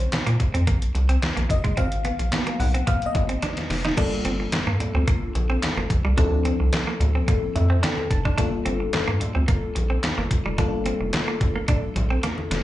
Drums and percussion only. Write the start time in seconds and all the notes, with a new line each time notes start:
0.00 closed hi-hat
0.12 snare, clap, closed hi-hat, high conga
0.27 closed hi-hat
0.40 kick, closed hi-hat, low conga
0.55 closed hi-hat
0.67 kick, closed hi-hat, muted conga
0.82 closed hi-hat
0.95 closed hi-hat, muted conga
1.09 closed hi-hat
1.22 snare, clap, closed hi-hat, high conga
1.37 closed hi-hat, high conga
1.50 kick, closed hi-hat, high conga
1.64 kick, closed hi-hat
1.77 kick, closed hi-hat, muted conga
1.92 closed hi-hat
2.05 closed hi-hat, muted conga
2.19 closed hi-hat
2.32 snare, clap, closed hi-hat, high conga
2.47 closed hi-hat
2.60 open hi-hat, low conga
2.75 closed hi-hat
2.87 kick, closed hi-hat, muted conga, low conga
3.02 closed hi-hat
3.15 kick, closed hi-hat, muted conga, low conga
3.29 closed hi-hat
3.42 snare, closed hi-hat, high conga
3.57 snare, closed hi-hat, high conga
3.70 snare, open hi-hat
3.85 snare, closed hi-hat
3.97 kick, closed hi-hat, crash, muted conga
4.25 closed hi-hat, muted conga
4.52 snare, clap, closed hi-hat, high conga
4.80 closed hi-hat, low conga
5.08 kick, closed hi-hat
5.35 closed hi-hat, muted conga
5.63 snare, clap, closed hi-hat, high conga
5.77 high conga
5.90 kick, closed hi-hat
6.17 kick, closed hi-hat, muted conga
6.45 closed hi-hat, muted conga
6.73 snare, clap, closed hi-hat, high conga
7.00 closed hi-hat, low conga
7.28 kick, closed hi-hat, muted conga, low conga
7.56 closed hi-hat, muted conga, low conga
7.83 snare, clap, closed hi-hat, high conga
7.98 high conga
8.11 kick, closed hi-hat
8.25 kick
8.38 kick, closed hi-hat, muted conga
8.66 closed hi-hat, muted conga
8.93 snare, clap, closed hi-hat, high conga
9.21 closed hi-hat, low conga
9.48 kick, closed hi-hat, muted conga
9.76 closed hi-hat, muted conga
10.03 snare, clap, closed hi-hat, high conga
10.18 high conga
10.31 kick, closed hi-hat
10.58 kick, closed hi-hat, muted conga
10.86 closed hi-hat, muted conga
11.13 snare, clap, closed hi-hat, high conga
11.41 kick, closed hi-hat, low conga
11.68 kick, closed hi-hat, low conga
11.96 closed hi-hat, muted conga, low conga
12.23 snare, closed hi-hat, high conga
12.38 high conga
12.51 snare, closed hi-hat